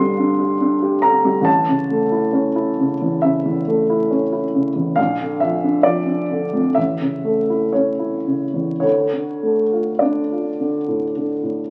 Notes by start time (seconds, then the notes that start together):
Already playing: D3 G3 D4 G4 C6
0.19 D4
0.39 G4
0.61 D4
0.82 G4
1.02 D3 A#5
1.25 G3
1.41 A1 A5
1.69 C#3
1.91 A3
2.12 E4
2.33 C#4
2.56 E4
2.80 C#3
3.02 E2
3.22 C#3 E5
3.46 E2
3.68 A3
3.90 E4
4.11 C#4
4.33 E4
4.54 C#3
4.76 E2
4.96 A#1 F5
5.21 D3
5.40 F3 E5
5.64 D4
5.83 F3 D5
6.06 D4
6.31 D3
6.53 F2
6.74 A1 E5
7.01 C#3
7.24 A3
7.50 E4
7.73 C#4 C#5
7.99 E4
8.27 C#3
8.54 E2
8.80 D2 C#5
9.13 D3
9.43 A3
9.72 F4
9.99 D4 D5
10.31 F4
10.60 D3
10.88 A2
11.17 D3
11.43 A2